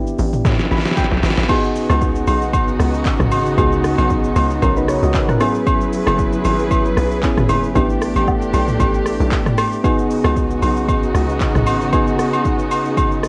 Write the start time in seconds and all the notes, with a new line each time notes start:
Already playing: G#1 B3 D4 E4 G4
0.07 shaker
0.19 A1, open hi-hat, shaker
0.33 mid tom, shaker
0.45 A2, kick, snare, shaker
0.52 snare
0.59 snare, shaker
0.65 snare
0.71 A1 B5, snare, open hi-hat, shaker
0.78 snare
0.85 snare, shaker
0.91 snare
0.97 G5, kick, snare, shaker
1.04 snare
1.11 B1, snare, shaker
1.17 snare
1.23 A1, snare, open hi-hat, shaker
1.30 snare
1.37 A1, snare, shaker
1.43 snare
1.48 C#3 B3 D#4 F#4 G#4, kick, crash, high agogo
1.64 shaker
1.75 open hi-hat, shaker
1.89 C#2, cross-stick, high agogo, shaker
2.01 kick, shaker
2.15 shaker
2.27 B1, open hi-hat, high agogo, shaker
2.42 shaker
2.53 kick, high agogo, shaker
2.68 shaker
2.80 C#2, cross-stick, open hi-hat, shaker
2.94 shaker
3.05 kick, clap, shaker
3.20 B1, cross-stick, mid tom, shaker
3.32 G#1, open hi-hat, high agogo, shaker
3.46 shaker
3.57 C#2 B3 D#4 F#4 G#4, kick, high agogo, shaker
3.72 shaker
3.84 cross-stick, open hi-hat, shaker
3.98 B1, high agogo, shaker
4.10 kick, shaker
4.24 shaker
4.36 C#2, open hi-hat, high agogo, shaker
4.50 shaker
4.62 B1 C#4 A#4, kick, high agogo, shaker
4.77 D#4 B4, shaker
4.88 C#5, cross-stick, open hi-hat, shaker
5.03 C#2 F#4 D#5, shaker
5.14 kick, clap, shaker
5.29 A#4 F#5, cross-stick, mid tom, shaker
5.40 F#3 B3 C#4 E4 G#4 B4, cross-stick, open hi-hat, high agogo, shaker
5.55 shaker
5.66 kick, high agogo, shaker
5.81 shaker
5.93 open hi-hat, shaker
6.07 F#1, cross-stick, high agogo, shaker
6.19 kick, shaker
6.33 shaker
6.45 G#1, open hi-hat, high agogo, shaker
6.59 shaker
6.71 kick, high agogo, shaker
6.85 shaker
6.97 B1, cross-stick, open hi-hat, shaker
7.12 shaker
7.23 B3 C#4 E4 G#4, kick, clap, shaker
7.37 G#1, cross-stick, mid tom, shaker
7.49 F#1, open hi-hat, high agogo, shaker
7.63 shaker
7.75 A1 A3 B3 D4 E4 G4, kick, high agogo, shaker
7.90 shaker
8.02 cross-stick, open hi-hat, shaker
8.16 A1, high agogo, shaker
8.27 kick, low woodblock, shaker
8.42 shaker
8.53 B1, open hi-hat, high agogo, shaker
8.68 mid tom, shaker
8.80 A1, kick, high agogo, shaker
8.94 shaker
9.06 cross-stick, open hi-hat, shaker
9.20 B1, shaker
9.32 kick, clap, shaker
9.46 cross-stick, mid tom, shaker
9.58 cross-stick, open hi-hat, high agogo, shaker
9.72 shaker
9.84 C#3 B3 D#4 F#4 G#4, kick, high agogo, shaker
9.99 shaker
10.11 open hi-hat, shaker
10.24 C#2, cross-stick, high agogo, shaker
10.36 kick, shaker
10.51 shaker
10.62 B1, open hi-hat, high agogo, shaker
10.77 shaker
10.88 kick, high agogo, shaker
11.03 shaker
11.15 C#2, cross-stick, open hi-hat, shaker
11.29 shaker
11.41 kick, clap, shaker
11.55 B1, cross-stick, mid tom, shaker
11.66 G#1, open hi-hat, high agogo, shaker
11.81 shaker
11.92 B3 D#4 F#4 G#4, kick, high agogo, shaker
12.07 shaker
12.19 cross-stick, open hi-hat, shaker
12.33 high agogo, shaker
12.45 kick, shaker
12.59 shaker
12.71 open hi-hat, high agogo, shaker
12.85 shaker
12.97 kick, high agogo, shaker
13.11 shaker
13.23 cross-stick, open hi-hat, shaker